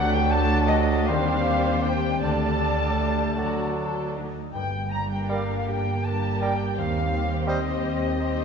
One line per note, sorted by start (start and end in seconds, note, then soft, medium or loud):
0.00 1.06 D2 medium
0.00 1.04 D3 medium
0.00 1.11 D3 medium
0.00 1.10 F#3 medium
0.00 1.09 A3 medium
0.00 1.09 D4 medium
0.00 2.22 D4 medium
0.00 1.09 F#4 medium
0.00 1.03 G4 medium
0.00 1.07 A4 medium
0.00 1.08 A4 medium
0.00 1.10 D5 medium
0.00 0.14 F#5 loud
0.00 0.15 F#5 medium
0.13 0.33 G5 loud
0.13 0.33 G5 medium
0.31 0.71 D4 medium
0.31 0.69 A5 loud
0.31 0.70 A5 loud
0.68 1.12 D4 medium
0.68 1.08 D#5 medium
0.68 1.07 D#5 medium
0.72 1.12 F#4 medium
1.07 2.22 D#2 medium
1.07 2.25 D#3 medium
1.07 1.94 G3 medium
1.07 2.22 G3 medium
1.07 2.19 G4 medium
1.07 1.93 G4 medium
1.07 2.19 C5 medium
1.07 1.94 C5 medium
1.07 1.84 F5 medium
1.07 1.84 F5 loud
1.11 2.21 C4 medium
1.11 3.34 G4 medium
1.47 1.84 C4 soft
1.82 2.26 C4 soft
1.82 3.00 G4 medium
1.82 2.20 G5 medium
1.82 2.21 G5 medium
2.21 3.35 D2 medium
2.21 3.35 D3 medium
2.21 3.37 D3 medium
2.21 3.39 G3 medium
2.21 4.21 A3 medium
2.21 3.35 D4 medium
2.21 3.37 A4 medium
2.21 3.33 A4 medium
2.21 3.37 D5 medium
2.21 3.33 D5 medium
2.21 4.10 A5 medium
2.62 2.99 D4 soft
3.00 3.77 D4 soft
3.00 3.41 G4 soft
3.37 4.31 D2 soft
3.37 4.32 D2 medium
3.37 4.57 D3 medium
3.37 4.33 F#3 soft
3.37 4.21 F#3 medium
3.37 4.31 D4 soft
3.37 3.73 F#4 medium
3.37 4.22 F#4 soft
3.37 4.19 A4 soft
3.37 4.19 D5 soft
3.78 4.15 D4 soft
3.78 4.16 A4 medium
4.15 6.41 D4 soft
4.15 4.53 D#4 soft
4.15 4.58 A4 soft
4.53 5.55 G1 medium
4.53 5.54 G2 medium
4.53 6.80 G2 medium
4.53 6.73 A#3 medium
4.53 8.45 G4 medium
4.53 4.89 G5 medium
4.53 4.93 G5 medium
4.90 6.03 D3 soft
4.90 8.45 G3 soft
4.90 6.03 D4 soft
4.90 5.09 A#5 medium
4.90 5.11 A#5 medium
4.94 6.04 G4 soft
4.94 6.04 A#4 soft
5.10 5.29 G5 medium
5.10 5.31 G5 medium
5.29 5.43 G3 medium
5.29 6.06 A#4 soft
5.29 5.44 A#4 soft
5.29 5.43 D5 medium
5.29 5.67 F5 medium
5.29 5.70 F5 medium
5.68 6.65 G1 medium
5.68 6.64 G2 medium
5.68 7.46 G4 medium
5.68 6.05 G5 medium
5.68 6.06 G5 medium
6.05 6.76 D3 soft
6.05 6.76 D4 soft
6.05 6.76 G4 medium
6.05 6.76 A#4 soft
6.05 6.80 A#4 soft
6.05 6.44 A5 medium
6.05 6.41 A5 medium
6.40 6.54 G3 medium
6.40 6.80 D4 medium
6.40 6.54 A#4 medium
6.40 6.54 D5 medium
6.40 6.76 G5 medium
6.40 6.77 G5 medium
6.77 7.70 D#2 medium
6.77 7.71 D#2 medium
6.77 8.45 D#3 medium
6.77 7.11 G3 soft
6.77 7.12 C4 soft
6.77 8.45 C4 medium
6.77 7.11 G4 soft
6.77 7.11 C5 soft
6.77 7.49 F5 medium
6.77 7.48 F5 medium
7.12 8.16 G3 medium
7.12 8.16 C4 medium
7.12 8.45 C4 soft
7.12 8.16 G4 medium
7.12 8.16 C5 medium
7.47 7.59 G3 medium
7.47 8.19 G4 medium
7.47 7.60 C5 medium
7.47 8.45 D#5 medium
7.47 7.60 D#5 medium
7.83 8.45 D#2 medium
7.83 8.45 C5 medium
8.17 8.45 G3 medium
8.17 8.45 C4 medium
8.17 8.45 G4 medium
8.17 8.45 G4 soft
8.17 8.45 C5 medium